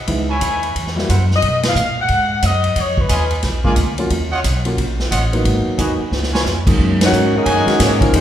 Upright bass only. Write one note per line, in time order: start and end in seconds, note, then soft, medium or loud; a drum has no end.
0.08 0.40 C#2 medium
0.42 0.74 D#2 medium
0.75 1.08 E2 medium
1.09 1.42 F#2 medium
1.42 1.75 B2 medium
1.75 2.08 A#2 medium
2.09 2.42 G#2 medium
2.43 2.75 F#2 medium
2.76 3.09 F2 medium
3.10 3.43 D#2 medium
3.43 3.76 A#1 medium
3.76 4.09 D2 medium
4.10 4.43 D#2 medium
4.44 4.77 B1 medium
4.78 5.10 A#1 medium
5.12 5.44 A1 medium
5.45 5.65 G#1 medium
5.66 muted upright bass stroke soft
5.79 5.98 D#2 medium
5.99 muted upright bass stroke soft
6.11 6.44 C#2 medium
6.44 6.77 F2 medium
6.79 7.12 F#2 medium
7.12 7.45 G#2 medium
7.46 7.66 F#2 medium
7.67 muted upright bass stroke soft
7.80 8.12 G#2 medium
8.13 8.21 F2 medium